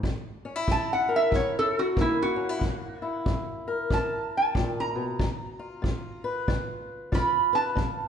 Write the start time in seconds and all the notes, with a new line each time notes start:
0.03 F#2, kick
0.45 C#4
0.56 E4
0.68 F#2 A5, kick
0.93 F#5
1.09 A#4
1.16 E5
1.31 F#2, kick
1.35 C#5
1.59 A4
1.79 F#4
1.96 F#2 A#3, kick
2.01 E4
2.22 F#4
2.36 C#4
2.49 E4
2.59 F#2, kick
3.02 E4
3.26 F#2, kick
3.68 A#4
3.91 F#2 A5, kick
4.37 A5
4.55 A#2, kick
4.80 A#5
4.95 B2
5.19 C#3, kick
5.59 F4
5.82 C#3, kick
6.24 B4
6.48 C#3, kick
7.12 C#3 F4 B5, kick
7.53 B4 A5
7.75 C#3, kick